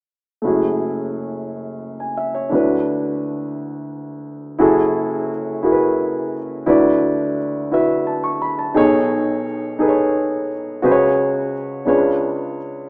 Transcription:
grand piano
0.42 F#1 F#2 A3 E4 F#4
0.47 G#4
2.00 G#5
2.17 E5
2.35 C#5
2.49 D2 D3 D4 E4 F#4
2.55 B4
4.59 F#1 F#2 E4 F#4 G#4 A4
5.63 E4 F#4 G#4 A#4
5.72 B4
6.66 D2 D3 E4 F#4 B4 D5
7.71 E4 F#4 B4 E5
8.07 A5
8.24 C#6
8.42 B5
8.59 A5
8.74 B1 B2 D#4 G#4 A4 C#5
9.79 D#4 G#4 A4 B4
9.88 C#5
10.82 C#2 C#3 F#4 G#4 B4 C5
10.92 C#5
11.85 C#2 C#3 D4 F4 B4 C#5

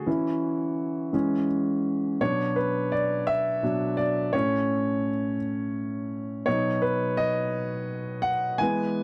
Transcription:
grand piano
Already playing: F#4
0.06 E3 C#4 E4
1.13 E3 G#3 C#4
2.21 B2 F#3 D4 C#5
2.56 B4
2.92 D5
3.27 E5
3.63 B2 F#3 D4
3.97 D5
4.33 A2 A3 C#4 C#5
6.46 B2 F#3 D#4 C#5
6.82 B4
7.17 D#5
8.22 F#5
8.58 E3 G#3 B3 G#5

